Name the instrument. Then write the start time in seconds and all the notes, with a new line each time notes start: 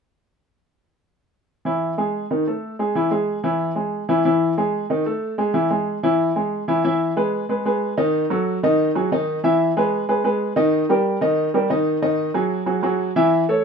upright piano
1.65 E3 E4
1.98 G#3 G#4
2.31 D#3 D#4
2.47 A3 A4
2.79 G#3 G#4
2.95 E3 E4
3.11 G#3 G#4
3.44 E3 E4
3.76 G#3 G#4
4.09 E3 E4
4.25 E3 E4
4.58 G#3 G#4
4.90 D#3 D#4
5.06 A3 A4
5.38 G#3 G#4
5.54 E3 E4
5.70 G#3 G#4
6.03 E3 E4
6.36 G#3 G#4
6.68 E3 E4
6.84 E3 E4 E5
7.17 G#3 G#4 B4
7.49 G#3 G#4 B4
7.65 G#3 G#4 B4
7.97 D#3 D#4 D#5
8.30 F#3 F#4 A4
8.63 D#3 D#4 D#5
8.95 F#3 F#4 G#4
9.12 D#3 D#4 D#5
9.44 E3 E4 E5
9.77 G#3 G#4 B4
10.09 G#3 G#4 B4
10.24 G#3 G#4 B4
10.56 D#3 D#4 D#5
10.89 G3 G4 A#4
11.21 D#3 D#4 D#5
11.54 G3 G4 A#4
11.70 D#3 D#4 D#5
12.02 D#3 D#4 D#5
12.34 F#3 F#4 G#4
12.66 F#3 F#4 G#4
12.83 F#3 F#4 G#4
13.16 E3 E4 E5
13.49 A3 A4 C#5